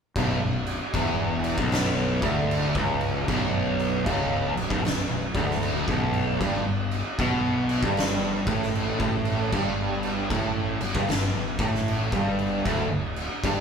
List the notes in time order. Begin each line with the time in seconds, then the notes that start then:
0.16 B0 B1, kick, crash
0.42 B0 B1
0.66 crash
0.94 E1 E2, kick, crash
1.44 crash
1.58 B0 B1, kick
1.72 snare, crash
2.22 D1 D2, kick, crash
2.51 crash
2.75 C#1 C#2, kick
3.01 crash
3.28 B0 B1, kick, crash
3.79 crash
4.06 C#1 C#2, kick, crash
4.56 B0 B1, crash
4.70 B0 B1, kick
4.84 B0 B1, snare, crash
5.10 B0 B1
5.35 D1 D2, kick, crash
5.51 snare
5.63 crash
5.88 B0 B1, kick
6.14 crash
6.41 G1 G2, kick, crash
6.66 G1 G2
6.91 crash
7.19 B1 B2, kick, crash
7.69 crash
7.83 G1 G2, kick
7.97 snare, crash
8.47 A1 A2, kick, crash
8.63 snare
8.75 crash
9.00 A1 A2, kick
9.25 crash
9.52 G1 G2, kick, crash
10.03 crash
10.30 A1 A2, kick, crash
10.81 G1 G2, crash
10.95 G1 G2, kick
11.08 G1 G2, snare, crash
11.34 G1 G2
11.59 A1 A2, kick, crash
11.75 snare
11.88 crash
12.12 G1 G2, kick
12.39 crash
12.66 D1 D2, kick, crash
12.90 D1 D2
13.16 crash
13.44 G1 G2, kick, crash